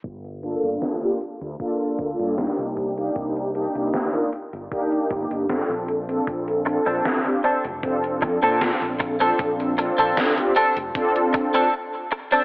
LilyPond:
<<
  \new Staff \with { instrumentName = "Analog polysynth" } { \time 4/4 \key g \minor \tempo 4 = 77 r8 <bes d' f' a'>8. <bes d' f' g'>16 r8 <bes d' f' a'>4 <bes d' ees' g'>8. <bes d' ees' g'>16~ | <bes d' ees' g'>8 <bes d' ees' g'>8. <bes d' ees' f'>16 r8 <bes d' ees' g'>4 <c' d' f' a'>8. <c' d' f' a'>16~ | <c' d' f' a'>8 <c' d' f' a'>8. <c' d' f' g'>16 r8 <c' d' f' a'>4 <c' d' f' a'>8. <c' d' f' a'>16~ | <c' d' f' a'>8 <c' d' f' a'>8. <c' d' f' g'>16 r8 <c' d' f' a'>4 r4 | }
  \new Staff \with { instrumentName = "Clean electric guitar" } { \time 4/4 \key g \minor r1 | r1 | r8. <c' d' a'>16 r8 <c' d' a'>16 r4 <c' d' a'>16 r8. <c' d' a'>16 | r8. <c' d' a'>16 r8 <c' d' a'>16 r4 <c' d' a'>16 r8. <c' d' a'>16 | }
  \new Staff \with { instrumentName = "Fretless electric bass" } { \clef bass \time 4/4 \key g \minor g,,8. g,,16 r8. d,16 r8 d,16 g,16 r16 c,8. | c,8. c,16 r8. g,,16 r8 g,,16 g,,16 r16 bes,,8. | bes,,8. bes,,16 r8. f,,8. f,16 bes,16 r16 bes,,8. | bes,,8. bes,,16 r8. f,,16 r2 | }
  \new DrumStaff \with { instrumentName = "Drums" } \drummode { \time 4/4 <hh bd>16 hh16 hh16 hh16 <hh sn>16 hh16 hh16 hh16 <hh bd>16 hh16 <hh bd>16 hh16 <hh sn>16 hh16 <hh bd>16 hh16 | <hh bd>16 hh16 hh16 hh16 <hh sn>16 hh16 hh16 hh16 <hh bd>16 hh16 <hh bd>16 hh16 <hh sn>16 hh16 hh16 hh16 | <hh bd>16 hh16 hh16 hh16 <hh sn>16 hh16 hh16 hh16 <hh bd>16 hh16 <hh bd>16 hh16 <hh sn>16 hh16 <hh bd>16 hh16 | <hh bd>16 hh16 hh16 hh16 <hh sn>16 hh16 hh16 hh16 <hh bd>16 hh16 <hh bd>16 hh16 r4 | }
>>